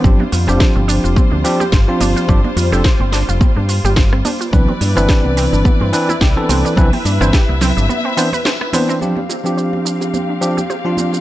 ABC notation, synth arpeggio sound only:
X:1
M:4/4
L:1/16
Q:"Swing 16ths" 1/4=107
K:Gmix
V:1 name="Synth arpeggio sound"
C D F G c C D F C D F G c C D F | C D F G c C D F C D F G c C D F | B, C D E G B, C D B, C D E G B, C D | B, C D E G B, C D B, C B, B c B B, C |
C D F G c C D F C D F G c C D F |]